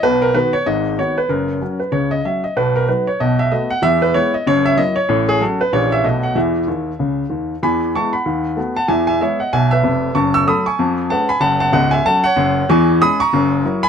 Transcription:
X:1
M:4/4
L:1/8
Q:"Swing" 1/4=190
K:B
V:1 name="Grand piano"
B A B c d2 c B | A3 B c d e d | B A B c d e d f | e B c d c e d c- |
[K:E] c G A B c e d f | e6- e z | [gb]2 [ac'] [fb]4 [fa] | [eg] [eg] [ce] [df] [eg] [Be]3 |
[ac'] [c'e'] [bd'] [gc']3 [fa] [gb] | [fa] [fa] [df] [eg] [fa] [cf]3 | [K:C#dor] [gc']2 [bd'] [ac']4 [gb] |]
V:2 name="Grand piano" clef=bass
[B,,,B,,]2 [D,B,F]2 [G,,,G,,]2 [D,B,F]2 | [F,,,F,,]2 [F,CF]2 [C,,C,]2 [F,CF]2 | [B,,,B,,]2 [F,DF]2 [B,,,B,,]2 [=A,B,F]2 | [E,,E,]2 [G,B,E]2 [F,,,F,,]2 [F,A,E]2 |
[K:E] [A,,,A,,]2 [F,CF]2 [^A,,,^A,,E,C=G]2 [B,,,B,,=A,B,F]2 | [E,,E,]2 [D,,D,]2 [C,,C,]2 [D,,D,]2 | [E,,E,]2 [G,B,E]2 [D,,D,]2 [A,B,F]2 | [E,,E,]2 [G,B,G]2 [B,,,B,,]2 [=F,,,=F,,]2 |
[F,,,F,,]2 [F,A,A]2 [^E,,^E,]2 [G,CB]2 | [F,,,F,,]2 [C,,,C,,]2 [F,CA]2 [F,,,F,,]2 | [K:C#dor] [E,,E,]2 [G,CG]2 [F,,,F,,]2 [F,EA]2 |]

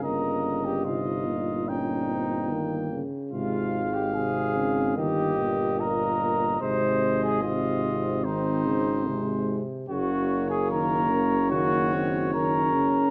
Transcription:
X:1
M:4/4
L:1/16
Q:1/4=73
K:Ab
V:1 name="Trumpet"
e4 e4 g6 z2 | f8 e4 e4 | e8 c6 z2 | [K:Ebdor] d16 |]
V:2 name="Flugelhorn"
B3 G F4 E6 z2 | F3 G A4 G4 B4 | c3 A F4 E6 z2 | [K:Ebdor] G3 A B4 G4 B4 |]
V:3 name="French horn"
B,4 E4 D2 C2 B,2 z2 | A,4 C4 B,8 | A,4 C4 C4 A,2 z2 | [K:Ebdor] B,8 B,2 C2 D4 |]
V:4 name="Trombone" clef=bass
D,4 C,2 B,,6 E,2 D,2 | C,2 z2 C,2 D,2 E,2 B,,6 | C,4 C,4 E,2 D,2 C,4 | [K:Ebdor] D,2 z2 E,2 D,2 E,4 E,2 D,2 |]
V:5 name="Tuba" clef=bass
G,,,12- G,,,2 z2 | A,,,8 G,,,8 | A,,,12- A,,,2 z2 | [K:Ebdor] G,,,16 |]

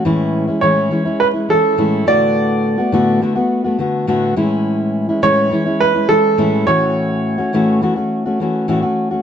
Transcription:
X:1
M:4/4
L:1/16
Q:1/4=104
K:A
V:1 name="Upright piano"
z4 c4 B2 A4 d2- | d6 z8 z2 | z4 c4 B2 A4 c2- | c6 z8 z2 |]
V:2 name="Steel-string acoustic guitar"
[A,,E,G,CE]3 [G,CE] [A,,E,G,CE]2 [E,G,CE] [G,CE]2 [G,CE] [E,G,CE]2 [A,,E,G,CE]2 [A,,D,A,B,F]2- | [A,,D,A,B,F]3 [A,B,F] [A,,D,A,B,F]2 [D,A,B,F] [A,B,F]2 [A,B,F] [D,A,B,F]2 [A,,D,A,B,F]2 [A,,E,G,CE]2- | [A,,E,G,CE]3 [G,CE] [A,,E,G,CE]2 [E,G,CE] [G,CE]2 [G,CE] [E,G,CE]2 [A,,E,G,CE]2 [A,,E,A,CF]2- | [A,,E,A,CF]3 [A,CF] [A,,E,A,CF]2 [E,A,CF] [A,CF]2 [A,CF] [E,A,CF]2 [A,,E,A,CF] [A,CF]2 [A,CF] |]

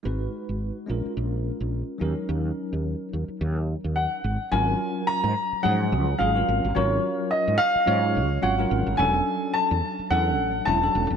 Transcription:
X:1
M:4/4
L:1/16
Q:"Swing 16ths" 1/4=107
K:D#m
V:1 name="Grand piano"
z16 | z12 f4 | g4 a4 f4 e4 | c4 d2 e6 f4 |
g4 =a4 f4 a4 |]
V:2 name="Tine electric piano"
[G,DFB]6 [G,CEA]8 [F,CDA]2- | [F,CDA]12- [F,CDA]2 z2 | [F,CEA]6 z2 [E,F,CG]3 z [F,CEG] [F,CEA]2 z | [F,CEA]6 z2 [F,CEc]3 z [F,CEc] [F,CEA]2 z |
[F,C=D=A]6 z2 [F,CDA]3 z [F,CD=E] [F,CDA]2 z |]
V:3 name="Fretless electric bass" clef=bass
G,,,2 z G,,,2 z A,,, z A,,,3 A,,,2 z D,, z | D,,2 z D,,2 z D,, z D,,3 D,,2 z G,,, z | G,,,2 z3 G,, z2 G,,2 C,,2 G,,,2 G,,, G,,, | G,,,2 z3 G,, z2 G,,2 C,,2 G,,,2 G,,, G,,, |
=E,,,2 z3 =E,, z2 E,,2 =A,,,2 E,,,2 E,,, E,,, |]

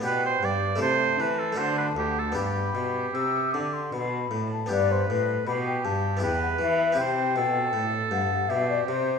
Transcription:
X:1
M:3/4
L:1/16
Q:1/4=79
K:G
V:1 name="Flute"
g2 z2 a4 a4 | b4 e'2 d' c' b3 a | d c B2 b g a2 g f e2 | g6 f2 e d c2 |]
V:2 name="Oboe"
B c d2 c2 B A c B G A | G8 z4 | B4 G4 B4 | c2 A6 G4 |]
V:3 name="Harpsichord"
[B,DG]4 [A,EA]4 [A,DF]4 | [B,DG]12 | [B,DG]8 [B,EG]4 | [CEG]12 |]
V:4 name="Harpsichord" clef=bass
B,,2 G,,2 C,2 E,2 D,2 D,,2 | G,,2 B,,2 C,2 D,2 B,,2 A,,2 | G,,2 A,,2 B,,2 G,,2 E,,2 E,2 | C,2 B,,2 A,,2 G,,2 B,,2 C,2 |]
V:5 name="Cello" clef=bass
B,,2 G,,2 C,2 E,2 D,2 D,,2 | G,,2 B,,2 C,2 D,2 B,,2 A,,2 | G,,2 A,,2 B,,2 G,,2 E,,2 E,2 | C,2 B,,2 A,,2 G,,2 B,,2 C,2 |]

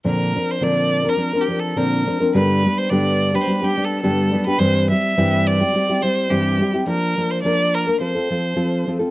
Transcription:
X:1
M:4/4
L:1/16
Q:"Swing" 1/4=106
K:Bb
V:1 name="Violin"
B3 c d3 B- (3B2 G2 A2 B3 z | =B3 c d3 B/2 c/2 (3B2 G2 A2 A3 B | c2 =e4 d4 c2 G3 z | B3 c d2 B2 c6 z2 |]
V:2 name="Nylon-string guitar"
[B,,D,F,CDB]2 [F,CDB]2 [B,,D,F,CDB]3 [F,CDB] [F,CDB] [F,CDB] [F,CDB]2 [B,,D,F,CDB]2 [F,CDB] [F,CDB] | [G,,D,G,=B,DG]2 [G,B,DG]2 [G,,D,G,B,DG]3 [G,B,DG] [G,B,DG] [G,B,DG] [G,B,DG]2 [G,,D,G,B,DG]2 [G,B,DG] [G,B,DG] | [G,,=E,G,C=EG]2 [G,CEG]2 [G,,E,G,CEG]3 [G,CEG] [G,CEG] [G,CEG] [G,CEG]2 [G,,E,G,CEG]2 [G,CEG] [G,CEG] | [F,B,DB]2 [F,B,DB]2 [F,B,DB]3 [B,DB] [F,CFA] [CFA] [F,CFA]2 [F,CFA]2 [F,CFA] [CFA] |]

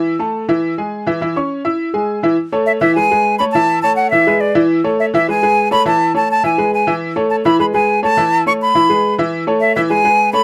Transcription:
X:1
M:4/4
L:1/16
Q:1/4=207
K:A
V:1 name="Flute"
z16 | z16 | z4 e2 e2 g6 b2 | a4 a2 f2 e4 d3 z |
z4 e2 e2 g6 b2 | a4 a2 a2 g4 g3 z | z4 a2 b2 b2 g4 a2- | a4 c'2 b8 z2 |
z4 e2 e2 g6 b2 |]
V:2 name="Upright piano"
[E,Ee]2 [A,Aa]4 [E,Ee]4 [G,Gg]4 [E,Ee]2 | [E,Ee]2 [Ccc']4 [Eee']4 [G,Gg]4 [E,Ee]2 | z2 [A,Ac]4 [E,Ee]2 [G,GB]2 [G,GB]4 [A,Ac]2 | [E,Ee]4 [A,Ac]4 [E,Ee]2 [G,GB]4 [E,Ee]2- |
[E,Ee]2 [A,Ac]4 [E,Ee]2 [G,GB]2 [G,GB]4 [A,Ac]2 | [E,Ee]4 [A,Ac]4 [E,Ee]2 [G,GB]4 [E,Ee]2- | [E,Ee]2 [A,Ac]4 [E,Ee]2 [G,GB]2 [G,GB]4 [A,Ac]2 | [E,Ee]4 [A,Ac]4 [E,Ee]2 [G,GB]4 [E,Ee]2- |
[E,Ee]2 [A,Ac]4 [E,Ee]2 [G,GB]2 [G,GB]4 [A,Ac]2 |]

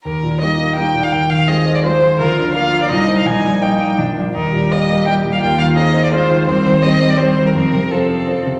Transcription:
X:1
M:3/4
L:1/16
Q:1/4=168
K:Eb
V:1 name="Violin"
B4 e4 g3 f | g2 f2 e3 d c4 | B4 f3 d e3 f | a4 g4 z4 |
B4 e4 g3 f | g2 f2 e3 d c4 | [K:Cdor] c4 e3 d c3 B | B4 A6 z2 |]
V:2 name="Viola"
z4 E4 E4 | z4 F4 F4 | F4 F4 E4 | E4 E4 D2 z2 |
E2 G8- G2 | F4 E4 F4 | [K:Cdor] C4 C4 C4 | C4 C6 z2 |]
V:3 name="Grand piano"
E,,2 B,,2 [B,EG]2 B,2 [B,EG]2 B,,2 | E,,2 E,2 [CFA]2 C2 [CFA]2 E,2 | D,,2 D,2 [B,FB]2 B,2 C,,2 [Ec]2 | B,,,2 B,,2 [B,Ee]2 B,2 B,,,2 [Fd]2 |
E,,2 B,,2 [B,Ge]2 B,2 [B,Ge]2 B,,2 | E,,2 E,2 [CAf]2 C2 [CAf]2 E,2 | [K:Cdor] E,,2 E,2 [CGc]2 C2 [CGc]2 E,2 | F,,2 C,2 [CFc]2 C2 [CFc]2 C,2 |]
V:4 name="Cello" clef=bass
z4 G,4 G,4 | z4 A,4 A,4 | F,4 F,4 G,4 | G,4 G,4 F,2 z2 |
G,12 | B,8 A,4 | [K:Cdor] G,4 G,4 G,4 | F,4 F,6 z2 |]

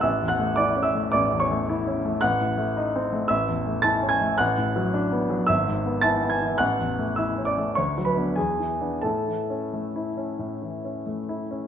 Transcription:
X:1
M:4/4
L:1/8
Q:1/4=108
K:A
V:1 name="Grand piano"
[ee'] [ff'] [dd'] [ee'] [dd'] [cc'] z2 | [ff']4 [ee']2 [aa'] [gg'] | [ff']4 [ee']2 [aa'] [gg'] | [ff']2 [ee'] [dd'] [cc'] [Bb] [Gg]2 |
[Aa]6 z2 |]
V:2 name="Grand piano"
(3A,,, E,, A, (3E C A, (3A,,, E,, A, (3E C A, | (3A,,, A,, A, (3_E =C A, (3A,,, =E,, A, (3=E ^C A, | (3A,,, A,, F, (3D B, F, (3G,,, G,, B, (3E B, E, | (3A,,, E,, A, (3E C A, (3D,, F, [B,D] (3E,, E, [B,D] |
(3A,, E, C (3A, E C (3A,, E, C (3A, E C |]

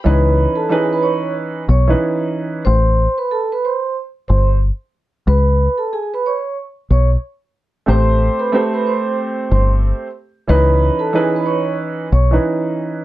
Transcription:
X:1
M:4/4
L:1/16
Q:"Swing 16ths" 1/4=92
K:C#m
V:1 name="Vibraphone"
[Bb]3 [Aa] [Gg] [Bb] [cc']2 z2 [cc'] z4 z | [=c=c']3 [Bb] [Aa] [Bb] [cc']2 z2 [cc'] z4 z | [Bb]3 [Aa] [Gg] [Bb] [cc']2 z2 [cc'] z4 z | [=c=c']3 [Bb] [Aa] [Bb] [cc']2 z2 [cc'] z4 z |
[Bb]3 [Aa] [Gg] [Bb] [cc']2 z2 [cc'] z4 z |]
V:2 name="Upright piano"
[E,CDB]4 [E,CDB]6 z [E,CDB]4- [E,CDB] | z16 | z16 | [A,=C=G=c]4 [A,CGc]8- [A,CGc] z3 |
[E,CDB]4 [E,CDB]6 z [E,CDB]4- [E,CDB] |]
V:3 name="Fingered electric bass" clef=bass
C,,3 z6 z B,,,2 z4 | A,,,3 z6 z =G,,,3 z3 | C,,3 z6 z B,,,2 z4 | A,,,3 z6 z =G,,,3 z3 |
C,,3 z6 z B,,,2 z4 |]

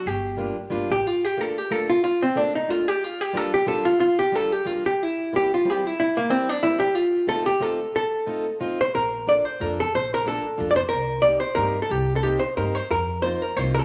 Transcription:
X:1
M:3/4
L:1/16
Q:"Swing" 1/4=183
K:Gm
V:1 name="Hollow-body jazz guitar"
G8 z2 G2 | [K:Bb] F2 G2 A2 G2 A2 F2 | F2 C2 D2 E2 F2 G2 | F2 G2 A2 G2 A2 F2 |
F2 G2 A2 G2 F2 G2 | =E4 G2 F2 G2 E2 | =E2 B,2 C2 D2 E2 G2 | F4 A2 G2 A4 |
A8 z2 c2 | B4 d2 c2 B2 A2 | c2 B2 A4 z3/2 d/2 c2 | B4 d2 c2 B3 A |
G3 A G2 c2 B2 c2 | B4 c2 B2 c2 B/2 A/2 z |]
V:2 name="Steel-string acoustic guitar"
z4 [G,B,DF]2 z2 [G,B,DF]2 z2 | [K:Bb] z4 [A,B,DF]2 z2 [A,B,DF]2 z2 | z4 [A,B,DF]2 z2 [A,B,DF]2 z2 | z4 [G,B,DF]2 z2 [G,B,DF]2 z2 |
z4 [G,B,DF]2 z2 [G,B,DF]2 z2 | z4 [G,B,C=E]2 z2 [G,B,CE]2 z2 | z4 [G,B,C=E]2 z2 [G,B,CE]2 z2 | z4 [A,CEF]2 z2 [A,CEF]2 z2 |
z4 [A,CEF]2 z2 [A,CEF]2 z2 | z4 [B,DFA]2 z2 [B,DFA]2 z2 | z4 [B,DFA]2 z2 [B,DFA]2 z2 | z4 [B,CEG]2 z2 [B,CEG]2 z2 |
z4 [B,CEG]2 z2 [B,CEG]2 z2 | z4 [B,CEF]2 z2 [B,CEF]2 z2 |]
V:3 name="Upright bass" clef=bass
G,,,8 G,,,2 A,,,2 | [K:Bb] z12 | z12 | z12 |
z12 | z12 | z12 | z12 |
z12 | B,,,8 F,,4 | B,,,8 F,,4 | C,,8 G,,4 |
C,,8 G,,4 | F,,8 C,,4 |]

